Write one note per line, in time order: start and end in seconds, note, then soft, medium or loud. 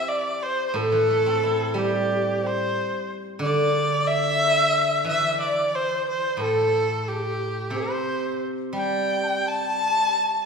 0.00 0.74 E3 medium
0.00 0.26 C4 soft
0.00 0.43 E4 soft
0.00 0.60 G4 soft
0.00 0.76 C5 soft
0.00 0.14 E5 medium
0.08 0.44 D5 medium
0.08 0.47 D5 medium
0.43 0.67 C5 medium
0.43 0.79 C5 medium
0.68 0.77 C5 medium
0.74 2.74 A2 medium
0.74 1.79 A4 medium
0.74 1.42 A4 medium
0.92 2.26 E3 soft
1.10 2.43 A3 soft
1.26 2.59 C4 soft
1.43 2.76 E4 soft
1.43 1.76 A4 medium
1.74 3.73 G3 medium
1.74 2.15 G4 medium
1.74 2.48 G4 medium
2.41 3.03 C5 medium
2.46 3.10 C5 medium
3.39 5.39 D3 medium
3.39 4.10 D5 medium
3.39 4.08 D5 loud
4.07 5.06 E5 loud
4.07 5.05 E5 loud
5.05 7.06 E3 medium
5.05 5.31 E5 medium
5.09 5.39 E5 loud
5.31 5.41 E5 medium
5.40 5.77 D5 medium
5.40 5.76 D5 medium
5.75 6.07 C5 medium
5.75 6.06 C5 medium
6.07 6.43 C5 medium
6.07 6.39 C5 medium
6.37 7.72 A2 medium
6.41 7.09 A4 medium
7.08 7.47 G4 medium
7.08 7.78 G4 medium
7.70 9.78 C3 medium
7.70 7.82 C5 medium
7.76 7.89 A4 soft
7.76 8.43 C5 medium
7.88 8.42 C5 medium
8.73 10.45 G3 medium
8.73 9.19 G5 medium
8.77 9.49 G5 medium
9.23 9.29 A5 medium
9.27 9.45 G5 medium
9.45 10.46 A5 medium
9.45 10.46 A5 loud